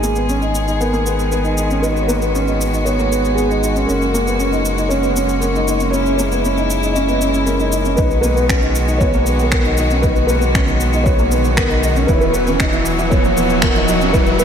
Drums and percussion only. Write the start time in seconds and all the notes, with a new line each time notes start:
0.03 shaker
0.16 shaker
0.29 shaker
0.42 shaker
0.55 shaker
0.68 shaker
0.81 shaker
0.94 shaker
1.06 shaker
1.19 shaker
1.32 shaker
1.45 shaker
1.58 shaker
1.71 shaker
1.84 shaker
1.97 shaker
2.09 shaker
2.22 shaker
2.35 shaker
2.48 shaker
2.61 shaker
2.74 shaker
2.86 shaker
2.99 shaker
3.12 shaker
3.25 shaker
3.38 shaker
3.51 shaker
3.63 shaker
3.76 shaker
3.89 shaker
4.02 shaker
4.15 shaker
4.27 shaker
4.40 shaker
4.53 shaker
4.65 shaker
4.78 shaker
4.91 shaker
5.03 shaker
5.16 shaker
5.29 shaker
5.42 shaker
5.56 shaker
5.68 shaker
5.80 shaker
5.94 shaker
6.06 shaker
6.19 shaker
6.32 shaker
6.45 shaker
6.58 shaker
6.70 shaker
6.83 shaker
6.96 shaker
7.09 shaker
7.21 shaker
7.34 shaker
7.47 shaker
7.60 shaker
7.72 shaker
7.85 shaker
7.97 kick, shaker
8.11 shaker
8.23 shaker
8.37 shaker
8.49 finger snap, kick, shaker
8.62 shaker
8.75 shaker
8.88 shaker
9.01 kick, shaker
9.14 shaker
9.26 shaker
9.39 shaker
9.52 finger snap, kick, shaker
9.65 shaker
9.77 shaker
9.90 shaker
10.03 kick, shaker
10.16 shaker
10.29 shaker
10.42 shaker
10.55 finger snap, kick, shaker
10.68 shaker
10.80 shaker
10.93 shaker
11.06 kick, shaker
11.19 shaker
11.32 shaker
11.45 shaker
11.57 finger snap, kick, shaker
11.70 shaker
11.83 shaker
11.96 shaker
12.09 kick, shaker
12.21 shaker
12.34 shaker
12.47 shaker
12.60 finger snap, kick, shaker
12.73 shaker
12.86 shaker
12.99 shaker
13.12 kick, shaker
13.24 shaker
13.37 shaker
13.50 shaker
13.62 finger snap, kick, shaker
13.75 shaker
13.88 shaker
14.01 shaker
14.14 kick, shaker
14.26 shaker
14.39 shaker